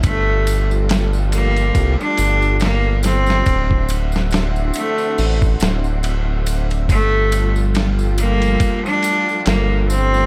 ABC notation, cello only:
X:1
M:4/4
L:1/16
Q:"Swing 16ths" 1/4=70
K:Gdor
V:1 name="Cello"
A,3 z3 B,3 D3 B,2 C2- | C2 z4 A,3 z6 z | A,3 z3 B,3 D3 B,2 C2 |]